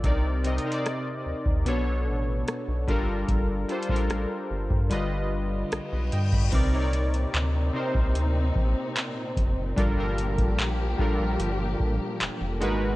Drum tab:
CC |------------------------------------------------|------------------------------------------------|x-----------------------------------------------|------------------------------------------------|
HH |x-----x-x-x-x-----------x-----------x-----x-----|x-----x-x-x-x-----------x-----------x-----x--x--|x-----x--x--x-----------x-----------x-----x-----|x-----x--x--x-----------x-----------x-----x-----|
CP |------------------------------------------------|------------------------------------------------|------------x-----------------------x-----------|------------x-----------------------x-----------|
SD |------------r-----------------------r-----------|------------r-----------------------r-----------|------------------------------------------------|------------------------------------------------|
BD |o--------------------o--------------------o-----|o--------o-----------o-----------------------o--|o--------------------o--------o-----------o-----|o--------o--------o-----------o-----------------|